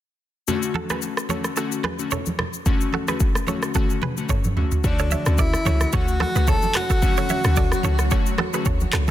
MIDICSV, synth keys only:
0, 0, Header, 1, 2, 480
1, 0, Start_track
1, 0, Tempo, 545455
1, 420, Time_signature, 4, 2, 24, 8
1, 8014, End_track
2, 0, Start_track
2, 0, Title_t, "Synth keys"
2, 0, Program_c, 0, 88
2, 418, Note_on_c, 0, 50, 89
2, 421, Note_on_c, 0, 57, 83
2, 422, Note_on_c, 0, 61, 83
2, 424, Note_on_c, 0, 66, 100
2, 760, Note_off_c, 0, 50, 0
2, 761, Note_off_c, 0, 57, 0
2, 761, Note_off_c, 0, 61, 0
2, 762, Note_off_c, 0, 66, 0
2, 790, Note_on_c, 0, 50, 70
2, 792, Note_on_c, 0, 57, 63
2, 793, Note_on_c, 0, 61, 66
2, 795, Note_on_c, 0, 66, 77
2, 965, Note_off_c, 0, 50, 0
2, 966, Note_off_c, 0, 57, 0
2, 967, Note_off_c, 0, 61, 0
2, 968, Note_off_c, 0, 66, 0
2, 1139, Note_on_c, 0, 50, 75
2, 1141, Note_on_c, 0, 57, 68
2, 1142, Note_on_c, 0, 61, 64
2, 1144, Note_on_c, 0, 66, 77
2, 1326, Note_off_c, 0, 50, 0
2, 1326, Note_off_c, 0, 57, 0
2, 1327, Note_off_c, 0, 61, 0
2, 1328, Note_off_c, 0, 66, 0
2, 1378, Note_on_c, 0, 50, 85
2, 1380, Note_on_c, 0, 57, 79
2, 1382, Note_on_c, 0, 61, 77
2, 1383, Note_on_c, 0, 66, 95
2, 1565, Note_off_c, 0, 50, 0
2, 1566, Note_off_c, 0, 57, 0
2, 1567, Note_off_c, 0, 61, 0
2, 1567, Note_off_c, 0, 66, 0
2, 1750, Note_on_c, 0, 50, 70
2, 1751, Note_on_c, 0, 57, 65
2, 1753, Note_on_c, 0, 61, 67
2, 1755, Note_on_c, 0, 66, 81
2, 1925, Note_off_c, 0, 50, 0
2, 1926, Note_off_c, 0, 57, 0
2, 1926, Note_off_c, 0, 61, 0
2, 1928, Note_off_c, 0, 66, 0
2, 2338, Note_on_c, 0, 50, 91
2, 2340, Note_on_c, 0, 57, 83
2, 2341, Note_on_c, 0, 61, 87
2, 2343, Note_on_c, 0, 66, 99
2, 2679, Note_off_c, 0, 50, 0
2, 2680, Note_off_c, 0, 57, 0
2, 2681, Note_off_c, 0, 61, 0
2, 2682, Note_off_c, 0, 66, 0
2, 2710, Note_on_c, 0, 50, 73
2, 2712, Note_on_c, 0, 57, 67
2, 2714, Note_on_c, 0, 61, 64
2, 2716, Note_on_c, 0, 66, 78
2, 2885, Note_off_c, 0, 50, 0
2, 2886, Note_off_c, 0, 57, 0
2, 2887, Note_off_c, 0, 61, 0
2, 2888, Note_off_c, 0, 66, 0
2, 3058, Note_on_c, 0, 50, 74
2, 3061, Note_on_c, 0, 57, 68
2, 3062, Note_on_c, 0, 61, 68
2, 3064, Note_on_c, 0, 66, 81
2, 3245, Note_off_c, 0, 50, 0
2, 3246, Note_off_c, 0, 57, 0
2, 3247, Note_off_c, 0, 61, 0
2, 3248, Note_off_c, 0, 66, 0
2, 3299, Note_on_c, 0, 50, 84
2, 3301, Note_on_c, 0, 57, 79
2, 3303, Note_on_c, 0, 61, 82
2, 3304, Note_on_c, 0, 66, 101
2, 3486, Note_off_c, 0, 50, 0
2, 3486, Note_off_c, 0, 57, 0
2, 3488, Note_off_c, 0, 61, 0
2, 3488, Note_off_c, 0, 66, 0
2, 3672, Note_on_c, 0, 50, 72
2, 3674, Note_on_c, 0, 57, 66
2, 3675, Note_on_c, 0, 61, 68
2, 3677, Note_on_c, 0, 66, 81
2, 3846, Note_off_c, 0, 50, 0
2, 3847, Note_off_c, 0, 57, 0
2, 3848, Note_off_c, 0, 61, 0
2, 3849, Note_off_c, 0, 66, 0
2, 4018, Note_on_c, 0, 50, 70
2, 4020, Note_on_c, 0, 57, 64
2, 4022, Note_on_c, 0, 61, 62
2, 4023, Note_on_c, 0, 66, 76
2, 4205, Note_off_c, 0, 50, 0
2, 4206, Note_off_c, 0, 57, 0
2, 4207, Note_off_c, 0, 61, 0
2, 4208, Note_off_c, 0, 66, 0
2, 4257, Note_on_c, 0, 50, 97
2, 4259, Note_on_c, 0, 57, 92
2, 4261, Note_on_c, 0, 73, 88
2, 4263, Note_on_c, 0, 66, 105
2, 4599, Note_off_c, 0, 50, 0
2, 4600, Note_off_c, 0, 57, 0
2, 4601, Note_off_c, 0, 73, 0
2, 4602, Note_off_c, 0, 66, 0
2, 4629, Note_on_c, 0, 50, 77
2, 4631, Note_on_c, 0, 57, 70
2, 4633, Note_on_c, 0, 61, 69
2, 4635, Note_on_c, 0, 66, 84
2, 4805, Note_off_c, 0, 50, 0
2, 4806, Note_off_c, 0, 57, 0
2, 4806, Note_off_c, 0, 61, 0
2, 4807, Note_off_c, 0, 66, 0
2, 4977, Note_on_c, 0, 50, 76
2, 4978, Note_on_c, 0, 57, 70
2, 4981, Note_on_c, 0, 61, 73
2, 4983, Note_on_c, 0, 66, 86
2, 5164, Note_off_c, 0, 50, 0
2, 5165, Note_off_c, 0, 57, 0
2, 5166, Note_off_c, 0, 61, 0
2, 5167, Note_off_c, 0, 66, 0
2, 5217, Note_on_c, 0, 50, 91
2, 5219, Note_on_c, 0, 57, 87
2, 5221, Note_on_c, 0, 61, 84
2, 5222, Note_on_c, 0, 66, 106
2, 5404, Note_off_c, 0, 50, 0
2, 5405, Note_off_c, 0, 57, 0
2, 5406, Note_off_c, 0, 61, 0
2, 5407, Note_off_c, 0, 66, 0
2, 5589, Note_on_c, 0, 50, 78
2, 5591, Note_on_c, 0, 57, 74
2, 5593, Note_on_c, 0, 61, 69
2, 5594, Note_on_c, 0, 66, 87
2, 5765, Note_off_c, 0, 50, 0
2, 5766, Note_off_c, 0, 57, 0
2, 5767, Note_off_c, 0, 61, 0
2, 5767, Note_off_c, 0, 66, 0
2, 6177, Note_on_c, 0, 50, 95
2, 6178, Note_on_c, 0, 57, 91
2, 6180, Note_on_c, 0, 61, 88
2, 6182, Note_on_c, 0, 66, 102
2, 6519, Note_off_c, 0, 50, 0
2, 6519, Note_off_c, 0, 57, 0
2, 6520, Note_off_c, 0, 61, 0
2, 6521, Note_off_c, 0, 66, 0
2, 6550, Note_on_c, 0, 50, 76
2, 6552, Note_on_c, 0, 57, 72
2, 6553, Note_on_c, 0, 61, 72
2, 6555, Note_on_c, 0, 66, 84
2, 6725, Note_off_c, 0, 50, 0
2, 6726, Note_off_c, 0, 57, 0
2, 6727, Note_off_c, 0, 61, 0
2, 6728, Note_off_c, 0, 66, 0
2, 6898, Note_on_c, 0, 50, 77
2, 6899, Note_on_c, 0, 57, 68
2, 6901, Note_on_c, 0, 61, 74
2, 6903, Note_on_c, 0, 66, 91
2, 7085, Note_off_c, 0, 50, 0
2, 7086, Note_off_c, 0, 57, 0
2, 7087, Note_off_c, 0, 61, 0
2, 7088, Note_off_c, 0, 66, 0
2, 7136, Note_on_c, 0, 50, 95
2, 7138, Note_on_c, 0, 57, 88
2, 7140, Note_on_c, 0, 61, 86
2, 7141, Note_on_c, 0, 66, 104
2, 7324, Note_off_c, 0, 50, 0
2, 7325, Note_off_c, 0, 57, 0
2, 7326, Note_off_c, 0, 61, 0
2, 7327, Note_off_c, 0, 66, 0
2, 7509, Note_on_c, 0, 50, 78
2, 7511, Note_on_c, 0, 57, 73
2, 7512, Note_on_c, 0, 61, 71
2, 7514, Note_on_c, 0, 66, 88
2, 7684, Note_off_c, 0, 50, 0
2, 7685, Note_off_c, 0, 57, 0
2, 7686, Note_off_c, 0, 61, 0
2, 7687, Note_off_c, 0, 66, 0
2, 8014, End_track
0, 0, End_of_file